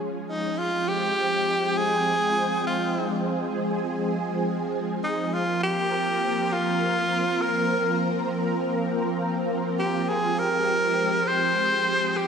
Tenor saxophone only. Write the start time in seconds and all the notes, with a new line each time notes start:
0.29 D#4
0.58 F4
0.88 G4
1.77 G#4
2.67 F4
5.04 D#4
5.34 F4
5.63 G4
6.52 F4
7.42 A#4
9.79 G4
10.09 G#4
10.39 A#4
11.28 C5
12.17 G4